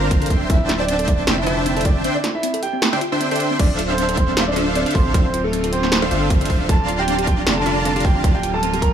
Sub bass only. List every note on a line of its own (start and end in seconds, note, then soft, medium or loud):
0.00 0.29 G1 loud
0.30 0.48 D1 medium
0.50 1.26 D1 loud
1.27 2.03 F1 loud
3.60 4.85 D1 loud
4.95 5.13 A1 medium
5.14 6.10 D1 loud
6.11 6.49 G1 loud
6.50 6.68 D1 medium
6.69 7.45 D1 loud
7.47 8.23 F1 medium
8.24 8.93 D1 loud